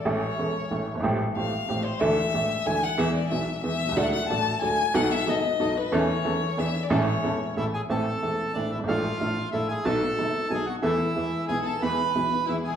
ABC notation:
X:1
M:3/4
L:1/16
Q:1/4=184
K:A
V:1 name="Violin"
c12 | z4 =f6 =c2 | e8 g2 f2 | e2 d2 e4 e4 |
f2 f2 a4 g4 | f2 e2 ^d6 B2 | c8 e3 d | c8 z4 |
[K:Am] z12 | z12 | z12 | z8 ^G2 A2 |
B8 E2 ^G2 |]
V:2 name="Bandoneon"
z12 | z12 | z12 | z12 |
z12 | z12 | z12 | z8 [Ee]2 [Gg]2 |
[K:Am] [Aa]8 [Dd]2 [Ee]2 | [Ff]8 [Ee]2 [^G^g]2 | [Aa]8 [^G^g]2 [^F^f]2 | [Ee]8 [^G^g]2 [Aa]2 |
[Bb]8 [Ee]2 [^G^g]2 |]
V:3 name="String section"
z12 | z12 | z12 | z12 |
[DFA]2 z2 [DFA]2 z2 [DFA]2 z2 | [B,^DA]2 z2 [B,DA]2 z2 [B,DA]2 z2 | [E,CEA]2 z2 [E,CEA]2 z2 [DEG]2 z2 | [CEA]2 z2 [CEA]2 z2 [CEA]2 z2 |
[K:Am] [CEA]2 z2 [CEA]2 z2 [CEA]2 z2 | [A,DFA]2 z2 [A,DFA]2 z2 [A,DFA]2 z2 | [B,^DA]2 z2 [B,DA]2 z2 [B,DA]2 z2 | [B,EA]2 z2 [B,E^G]2 z2 [B,EG]2 z2 |
[B,E^G]2 z2 [B,EG]2 z2 [B,EG]2 z2 |]
V:4 name="Upright piano" clef=bass
[A,,,A,,E,A,CA]2 z2 [E,,,E,,E,A,CA]2 z2 [A,,,A,,E,A,CA]2 z/2 F,,,/2 =G,,,/2 ^G,,,/2 | [A,,,A,,=F,A,=C=G]2 z2 [A,,,A,,F,A,CG]2 z2 [A,,,A,,F,A,CG]2 z2 | [D,,D,E,A,DA]2 z2 [A,,,A,,E,A,DA]2 z2 [D,,D,E,A,DA]2 z2 | [E,,E,G,B,G]2 z2 [B,,,B,,E,G,B,G]2 z2 [E,,E,G,B,G]2 z/2 B,,,/2 =C,,/2 ^C,,/2 |
[D,,D,F,A,DA]2 z2 [A,,,A,,F,A,DA]2 z2 [D,,D,F,A,DA]2 z2 | [B,,,B,,F,B,^DA]2 z2 [F,,,F,,F,B,DA]2 z2 [B,,,B,,F,B,DA]2 z2 | [E,,E,A,CA]2 z2 [E,,E,A,CA]2 z2 [E,,E,B,DG]2 z2 | [A,,,A,,E,A,CA]2 z2 [E,,,E,,E,A,CA]2 z2 [A,,,A,,E,A,CA]2 z2 |
[K:Am] [A,,,A,,E,A,CA]2 z2 [E,,,E,,E,A,CA]2 z2 [A,,,A,,E,A,CA]2 z/2 ^F,,,/2 G,,,/2 ^G,,,/2 | [A,,,A,,F,A,DA]2 z2 [A,,,A,,F,A,DA]2 z2 [A,,,A,,F,A,DA]2 z2 | [B,,,B,,^F,B,^DA]2 z2 [^F,,,^F,,F,B,DA]2 z2 [B,,,B,,F,B,DA]2 z2 | [E,,E,A,B,A]2 z2 [E,,E,^G,B,^G]2 z2 [B,,,B,,E,G,B,G]2 z2 |
[E,,E,^G,B,^G]2 z2 [B,,,B,,E,G,B,G]2 z2 [E,,E,G,B,G]2 z/2 ^F,,,/2 z |]